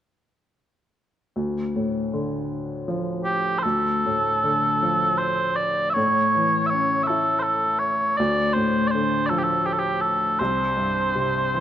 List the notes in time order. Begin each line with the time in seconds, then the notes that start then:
1.36 D2
1.76 A2
2.13 D3
2.88 F3
3.25 G4
3.59 C5
3.63 D2 A4
4.06 A2
4.44 D3
4.83 F3
5.18 C5
5.56 D5
5.90 C#5 E5
5.96 A2
6.35 E3
6.66 C#5 E5
6.73 C#4
7.03 A4 E5
7.10 E4
7.39 A4 C5
7.79 C#5
8.17 D2 D5
8.53 A2 C5
8.88 C5 D5
8.94 D3
9.26 A4 D5
9.31 F3
9.38 G4
9.43 A4
9.66 G4
9.73 A4
9.79 G4
10.01 A4
10.39 C2 C5
10.77 G2
11.15 C3
11.54 E3